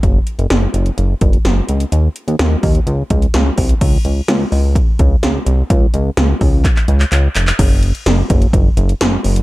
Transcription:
<<
  \new Staff \with { instrumentName = "Analog synth bass" } { \clef bass \time 4/4 \key ges \lydian \tempo 4 = 127 ges,,8 r16 ges,,16 ges,,8 ges,,8 ges,,8 ges,,8 ges,,8 des,8 | ees,8 r16 ees,16 ees,8 ees,8 des,8 des,8 des,8 c,8 | des,8 des,8 des,8 des,8. r16 des,8 des,8 c,8 | des,8 des,8 des,8 des,8. r16 des,8 des,8 f,,8 |
ges,,4 ges,,8 ges,,8 ges,,8 ges,,8 ges,,8 ges,,8 | }
  \new DrumStaff \with { instrumentName = "Drums" } \drummode { \time 4/4 <hh bd>8 hh16 hh16 <hh sn>8 hh16 hh16 hh8 <hh bd>16 hh16 <hh sn>8 hh16 hh16 | hh8 hh16 hh16 <hh sn>8 <hho bd>16 hh16 hh8 <hh bd>16 hh16 <hh sn>8 <hho bd>16 hh16 | <cymc hh bd>8 hh8 <hh sn>8 hho8 <hh bd>8 <hh bd>8 <hh sn>8 hh8 | <hh bd>8 hh8 <hh sn>8 <hho bd>8 <hc hh bd>16 hc16 hh16 hc16 <hc hh>8 <hc hh>16 hc16 |
<cymc hh bd>8 hh16 hh16 <hh sn>8 <hh bd>16 hh16 <hh bd>8 hh16 hh16 <hh sn>8 hho16 hh16 | }
>>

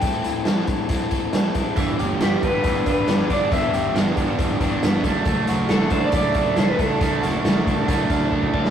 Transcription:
<<
  \new Staff \with { instrumentName = "Clean electric guitar" } { \time 4/4 \key d \mixolydian \tempo 4 = 138 g''4. r2 r8 | r4 g'8 b'4 b'4 d''8 | e''4 r2. | r4 a'8 c''16 d''16 d''4 c''16 b'16 a'8~ |
a'2. r4 | }
  \new Staff \with { instrumentName = "Overdriven electric guitar" } { \time 4/4 \key d \mixolydian <a, e c' e' a'>8 <c' e' a'>8 <a, e c' e' a'>8 <c' e' a'>8 <e c' e' a'>8 <a, e c' e' a'>8 <e c' e' a'>8 <c' e' a'>8 | <g, d g b d' g'>8 <g b d' g'>8 <g, d g b d' g'>8 <g b d' g'>8 <g b d' g'>8 <g, d g b d' g'>8 <g b d' g'>8 <g b d' g'>8 | <g, d g b d' g'>8 <g b d' g'>8 <g, d g b d' g'>8 <g b d' g'>8 <g b d' g'>8 <g, d g b d' g'>8 <g b d' g'>8 <fis a d' a'>8 | <fis a d' a'>8 <a d' a'>8 <fis a d' a'>8 <a d' a'>8 <fis a d' a'>8 <fis a d' a'>8 <fis a d' a'>8 <a d' a'>8 |
<fis a d' a'>8 <a d' a'>8 <fis a d' a'>8 <a d' a'>8 <fis a d' a'>8 <fis a d' a'>8 <fis a d' a'>8 <a d' a'>8 | }
  \new Staff \with { instrumentName = "Overdriven electric guitar" } { \time 4/4 \key d \mixolydian r1 | e8 g'8 b8 d'8 e8 d'8 b8 d'8 | e8 g'8 b8 d'8 e8 d'8 b8 a8 | a8 fis'8 a8 d'8 a8 d'8 a8 d'8 |
a8 fis'8 a8 d'8 a8 d'8 a8 d'8 | }
  \new Staff \with { instrumentName = "Picked electric bass" } { \clef bass \time 4/4 \key d \mixolydian r1 | g,,8 g,,8 g,,8 g,,8 g,,8 g,,8 g,,8 g,,8 | g,,8 g,,8 g,,8 g,,8 g,,8 g,,8 g,,8 fis,,8 | fis,,8 fis,,8 fis,,8 fis,,8 fis,,8 fis,,8 fis,,8 fis,,8 |
fis,,8 fis,,8 fis,,8 fis,,8 fis,,8 fis,,8 fis,,8 fis,,8 | }
  \new DrumStaff \with { instrumentName = "Drums" } \drummode { \time 4/4 <hh bd>8 hh8 <hh sn>8 <hh bd>8 <hh bd>8 <hh bd>8 <hh sn>8 <hh bd>8 | <hh bd>8 hh8 <hh sn>8 <hh bd>8 <hh bd>8 <hh bd>8 <hh sn>16 sn16 <hh bd>8 | <hh bd>8 hh8 <hh sn>8 <hh bd>8 <hh bd>8 <hh bd>8 <hh sn>8 <hh bd>8 | <hh bd>8 hh8 <hh sn>8 <hh bd>8 <hh bd>8 <hh bd>8 <hh sn>8 <hh bd>8 |
<hh bd>8 hh8 <hh sn>8 <hh bd>8 <hh bd>8 <hh bd>8 bd16 bd16 bd16 sn16 | }
>>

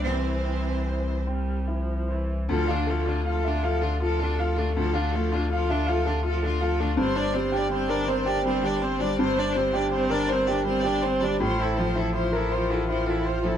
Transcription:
<<
  \new Staff \with { instrumentName = "Violin section" } { \time 6/8 \key d \minor \tempo 4. = 54 c''4. r4. | a'16 f'16 a'16 f'16 a'16 f'16 a'16 f'16 a'16 f'16 a'16 f'16 | a'16 f'16 a'16 f'16 a'16 f'16 a'16 f'16 a'16 f'16 a'16 f'16 | c''16 d''16 c''16 d''16 c''16 d''16 c''16 d''16 c''16 d''16 c''16 d''16 |
c''16 d''16 c''16 d''16 c''16 d''16 c''16 d''16 c''16 d''16 c''16 d''16 | c''16 a'16 c''16 a'16 c''16 a'16 c''16 a'16 c''16 a'16 c''16 a'16 | }
  \new Staff \with { instrumentName = "Upright piano" } { \time 6/8 \key d \minor <c, c''>8 c'8 c''8 c'8 e'8 c''8 | d,16 f''16 a16 f'16 f''16 e''16 f''16 a'16 f'16 a'16 f''16 a16 | d,16 f''16 a16 f'16 f''16 e''16 f''16 a'16 f'16 a'16 f''16 a16 | g,16 c''16 g16 g'16 c''16 bes'16 c''16 g'16 g16 g'16 c''16 g16 |
g,16 c''16 g16 g'16 c''16 bes'16 c''16 g'16 g16 g'16 c''16 g16 | a,16 c''16 f16 e'16 c''16 bes'16 c''16 f'16 e'16 f'16 c''16 f16 | }
  \new Staff \with { instrumentName = "Viola" } { \time 6/8 \key d \minor e4. g8 f8 e8 | f'16 d'16 f'16 d'16 f'16 d'16 f'16 d'16 f'16 d'16 f'16 d'16 | f'16 d'16 f'16 d'16 f'16 d'16 f'16 d'16 f'16 d'16 f'16 d'16 | c'16 d'16 c'16 d'16 c'16 d'16 c'16 d'16 c'16 d'16 c'16 d'16 |
c'16 d'16 c'16 d'16 c'16 d'16 c'16 d'16 c'16 d'16 c'16 d'16 | f'16 e'16 f'16 e'16 f'16 e'16 f'16 e'16 f'16 e'16 f'16 e'16 | }
  \new Staff \with { instrumentName = "Cello" } { \clef bass \time 6/8 \key d \minor c'4. r4. | f16 d16 f16 d16 f16 d16 f16 d16 f16 d16 f16 d16 | f16 d16 f16 d16 f16 d16 f16 d16 f16 d16 f16 d16 | g16 d16 g16 d16 g16 d16 g16 d16 g16 d16 g16 d16 |
g16 d16 g16 d16 g16 d16 g16 d16 g16 d16 g16 d16 | f16 e16 f16 e16 f16 e16 f16 e16 f16 e16 f16 e16 | }
  \new Staff \with { instrumentName = "Sub bass" } { \clef bass \time 6/8 \key d \minor c,2. | d,2.~ | d,2. | g,,2.~ |
g,,2. | a,,2. | }
>>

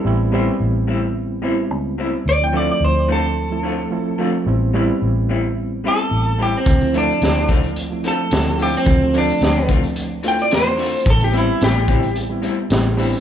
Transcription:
<<
  \new Staff \with { instrumentName = "Clean electric guitar" } { \time 4/4 \key a \minor \tempo 4 = 109 r1 | d''16 g''16 d''16 d''16 c''8 a'2 r8 | r2 r8 a'4 g'16 c'16~ | c'8 d'4 r4 a'4 g'16 c'16~ |
c'8 d'4 r4 g''16 d''16 c''4 | a'16 g'16 e'8 g'4 r2 | }
  \new Staff \with { instrumentName = "Reed electric piano" } { \time 4/4 \key a \minor <g b c' e'>8 <g b c' e'>2 <g b c' e'>4. | r16 <f a c' e'>16 <f a c' e'>4.~ <f a c' e'>16 <f a c' e'>8. <f a c' e'>8 <f a c' f'>8 | <g b c' e'>8 <g b c' e'>2 <g b c' e'>4. | r16 <f a c' e'>16 <f a c' e'>4.~ <f a c' e'>16 <f a c' e'>8. <f a c' e'>8 <f a c' e'>8 |
<f a c' f'>8 <f a c' d'>2 <a c' e' f'>4. | r16 <g b c' e'>16 <g b c' e'>4.~ <g b c' e'>16 <g b c' e'>8. <g b c' e'>8 <g b c' d'>8 | }
  \new Staff \with { instrumentName = "Clean electric guitar" } { \time 4/4 \key a \minor r8 <a, g c' e'>8 r8 <a, g c' e'>8 r8 <a, g c' e'>8 r8 <a, g c' e'>8 | r8 <d a c' f'>8 r8 <d a c' f'>8 r8 <d a c' f'>8 r8 <d a c' f'>8 | r8 <a, g c' e'>8 r8 <a, g c' e'>8 r8 <a, g c' e'>8 r8 <a, g c' e'>8 | r8 <d a c' f'>8 r8 <d a c' f'>8 r8 <d a c' f'>8 r8 <d a c' f'>8 |
r8 <d a c' f'>8 r8 <d a c' f'>8 r8 <d a c' f'>8 r8 <d a c' f'>8 | r8 <a, g c' e'>8 r8 <a, g c' e'>8 r8 <a, g c' e'>8 r8 <a, g c' e'>8 | }
  \new Staff \with { instrumentName = "Fingered electric bass" } { \clef bass \time 4/4 \key a \minor a,,4 a,,2 cis,4 | d,4 d,2 bes,,4 | a,,4 a,,2 a,,4 | d,4 d,2 d,4 |
d,4 d,2 e,4 | a,,4 a,,2 a,,4 | }
  \new DrumStaff \with { instrumentName = "Drums" } \drummode { \time 4/4 r4 r4 r4 r4 | r4 r4 r4 r4 | r4 r4 r4 r4 | <hh bd>16 hh16 hh8 <hh sn>8 <hh bd>16 hh16 hh8 hh8 <hh sn>8 hho8 |
<hh bd>8 hh16 hh16 <hh sn>8 <hh bd>16 hh16 hh8 hh16 hh16 <hh sn>8 hho8 | <hh bd>16 hh16 hh8 <hh sn>8 <hh bd>16 hh16 hh8 hh8 <hh sn>8 hho8 | }
>>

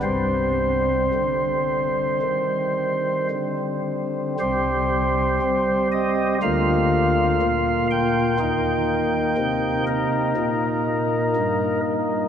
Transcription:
<<
  \new Staff \with { instrumentName = "Pipe organ" } { \time 4/4 \key c \minor \tempo 4 = 60 c''2. r4 | c''4. ees''8 f''4. g''8~ | g''4. bes'2 r8 | }
  \new Staff \with { instrumentName = "Pipe organ" } { \clef bass \time 4/4 \key c \minor << { <g c'>1 | <g g'>2 <bes f'>2 | <bes ees'>1 | } \\ { <c, c>4 d4 ees4 d4 | <c, c>4 c'4 <d, d>4 bes,4 | <ees, ees>4 c4 bes,4 g,4 | } >> }
>>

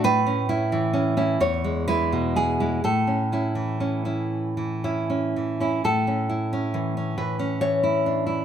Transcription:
\new Staff \with { instrumentName = "Nylon-string guitar" } { \time 6/8 \key a \major \tempo 4. = 43 << { b'4. cis''8 b'8 gis'8 | a'2~ a'8 r8 | a'4. b'8 cis''4 | } \\ { a,16 cis'16 <cis' e'>16 e16 cis'16 <cis' e'>16 e,16 gis16 <gis e'>16 b,16 gis16 <gis e'>16 | a,16 cis'16 <cis' e'>16 e16 cis'16 <cis' e'>8 e16 <cis' e'>16 cis'16 e16 <cis' e'>16 | a,16 cis'16 e'16 cis'16 e16 cis'16 e16 cis'16 e16 e'16 d'16 e'16 | } >> }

